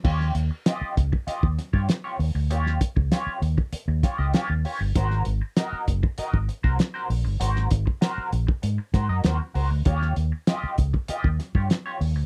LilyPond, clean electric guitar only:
\new Staff \with { instrumentName = "Clean electric guitar" } { \time 4/4 \key ees \mixolydian \tempo 4 = 98 <f' g' des''>8 r8 <f' g' ees''>8 r8 <f' g' ees''>16 r8 <f' g' des''>16 r16 <f' g' des''>16 r8 | <f' g' des''>8 r8 <f' g' des''>8 r4 <f' g' des''>16 <f' g' ees''>16 <f' g' des''>16 r16 <f' g' des''>16 r16 | <ges' bes' c''>8 r8 <ges' bes' ees''>8 r8 <ges' bes' ees''>16 r8 <ges' bes' c''>16 r16 <ges' bes' c''>16 r8 | <ges' bes' c''>8 r8 <ges' bes' c''>8 r4 <ges' bes' c''>16 <ges' bes' ees''>16 <ges' bes' c''>16 r16 <ges' bes' c''>16 r16 |
<f' g' des''>8 r8 <f' g' ees''>8 r8 <f' g' ees''>16 r8 <f' g' des''>16 r16 <f' g' des''>16 r8 | }